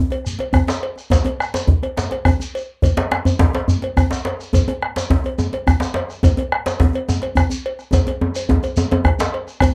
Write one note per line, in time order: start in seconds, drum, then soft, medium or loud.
0.10 cowbell medium
0.10 djembe tone medium
0.25 bombo rim soft
0.25 shekere medium
0.39 cowbell medium
0.39 djembe slap medium
0.53 bombo rim medium
0.53 bombo low medium
0.53 cowbell soft
0.53 djembe bass medium
0.53 shekere soft
0.67 djembe slap medium
0.67 djembe tone medium
0.67 shekere soft
0.83 cowbell medium
0.96 bombo rim soft
0.96 djembe slap soft
0.96 shekere soft
1.10 bombo rim soft
1.10 bombo low medium
1.10 cowbell medium
1.10 djembe slap soft
1.10 djembe slap medium
1.10 djembe bass medium
1.10 shekere medium
1.25 cowbell soft
1.25 djembe slap medium
1.25 djembe tone medium
1.39 bombo rim medium
1.39 djembe slap soft
1.39 shekere soft
1.54 cowbell soft
1.54 djembe slap medium
1.54 shekere soft
1.67 bombo rim soft
1.67 bombo low loud
1.67 djembe slap soft
1.67 djembe bass medium
1.83 bombo rim soft
1.83 cowbell medium
1.83 djembe slap soft
1.83 djembe tone medium
1.97 bombo rim soft
1.97 djembe slap medium
1.97 shekere medium
2.11 bombo rim soft
2.11 cowbell soft
2.11 djembe slap medium
2.25 bombo rim medium
2.25 bombo low loud
2.25 cowbell soft
2.25 djembe bass medium
2.25 shekere soft
2.40 bombo rim soft
2.40 djembe slap soft
2.40 djembe tone soft
2.40 shekere soft
2.54 cowbell soft
2.54 djembe slap soft
2.54 shekere soft
2.82 bombo low loud
2.82 cowbell medium
2.82 djembe slap soft
2.82 djembe bass medium
2.82 shekere soft
2.97 cowbell soft
2.97 djembe slap medium
2.97 djembe slap loud
2.97 djembe tone soft
3.11 bombo rim loud
3.11 djembe slap soft
3.11 djembe slap medium
3.25 bombo rim soft
3.25 cowbell soft
3.25 djembe bass medium
3.25 shekere soft
3.39 bombo low loud
3.39 djembe slap loud
3.39 djembe bass medium
3.53 cowbell medium
3.53 djembe slap medium
3.53 djembe tone medium
3.68 bombo rim soft
3.68 djembe bass medium
3.68 shekere medium
3.82 cowbell medium
3.82 djembe slap medium
3.97 bombo rim medium
3.97 bombo low medium
3.97 cowbell soft
3.97 djembe bass medium
3.97 shekere soft
4.11 djembe slap medium
4.11 djembe tone medium
4.11 shekere soft
4.25 cowbell soft
4.25 djembe slap medium
4.39 bombo rim soft
4.39 djembe slap soft
4.39 shekere soft
4.53 bombo low medium
4.53 cowbell medium
4.53 djembe slap soft
4.53 djembe tone medium
4.53 djembe bass medium
4.53 shekere medium
4.68 cowbell soft
4.68 djembe slap medium
4.68 djembe tone medium
4.82 bombo rim medium
4.82 djembe slap soft
4.96 cowbell soft
4.96 djembe slap soft
4.96 djembe slap medium
4.96 shekere soft
5.10 bombo low medium
5.10 djembe slap medium
5.10 djembe bass medium
5.24 cowbell soft
5.24 djembe tone soft
5.38 bombo rim soft
5.38 djembe tone medium
5.38 shekere medium
5.53 cowbell soft
5.53 djembe slap medium
5.67 bombo rim medium
5.67 bombo low medium
5.67 djembe bass medium
5.67 shekere soft
5.80 djembe slap medium
5.80 djembe tone medium
5.80 shekere soft
5.94 cowbell soft
5.94 djembe slap medium
6.09 bombo rim soft
6.09 djembe slap soft
6.09 shekere soft
6.23 bombo low loud
6.23 cowbell medium
6.23 djembe slap soft
6.23 djembe tone medium
6.23 djembe bass medium
6.23 shekere medium
6.37 cowbell soft
6.37 djembe slap medium
6.37 djembe tone medium
6.52 bombo rim loud
6.52 djembe slap soft
6.66 bombo rim soft
6.66 cowbell soft
6.66 djembe slap soft
6.66 djembe slap medium
6.66 shekere soft
6.80 bombo low loud
6.80 djembe slap medium
6.80 djembe bass medium
6.93 cowbell medium
6.93 djembe tone medium
7.08 bombo rim soft
7.08 djembe tone medium
7.08 shekere medium
7.22 cowbell medium
7.22 djembe slap medium
7.35 bombo rim loud
7.35 bombo low medium
7.35 cowbell soft
7.35 djembe bass medium
7.35 shekere soft
7.50 djembe tone medium
7.50 shekere soft
7.66 cowbell medium
7.79 bombo rim soft
7.79 djembe slap soft
7.79 shekere soft
7.92 bombo rim soft
7.92 bombo low medium
7.92 cowbell medium
7.92 djembe slap soft
7.92 djembe tone medium
7.92 djembe bass medium
7.92 shekere medium
8.07 cowbell medium
8.07 djembe slap medium
8.07 djembe tone medium
8.21 djembe tone medium
8.35 bombo rim soft
8.35 cowbell soft
8.35 shekere soft
8.49 bombo low medium
8.49 djembe slap soft
8.49 djembe tone loud
8.49 djembe bass medium
8.63 cowbell medium
8.63 djembe slap soft
8.63 djembe tone medium
8.63 shekere soft
8.77 djembe tone medium
8.77 shekere medium
8.91 cowbell medium
8.91 djembe slap medium
8.91 djembe tone loud
9.04 bombo rim medium
9.04 bombo low medium
9.04 cowbell soft
9.04 djembe slap soft
9.04 djembe bass medium
9.19 djembe slap soft
9.19 djembe slap loud
9.19 djembe tone medium
9.19 shekere soft
9.34 cowbell soft
9.47 bombo rim soft
9.47 djembe slap soft
9.47 shekere soft
9.60 bombo rim loud
9.60 bombo low loud
9.60 cowbell medium
9.60 djembe bass medium
9.60 shekere medium